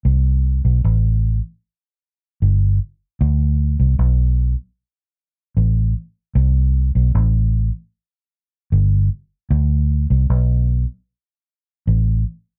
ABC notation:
X:1
M:4/4
L:1/16
Q:1/4=76
K:Ddor
V:1 name="Fingered electric bass" clef=bass
C,,3 B,,, A,,,3 z4 z G,,,2 z2 | D,,3 C,, B,,,3 z4 z A,,,2 z2 | C,,3 B,,, A,,,3 z4 z G,,,2 z2 | D,,3 C,, B,,,3 z4 z A,,,2 z2 |]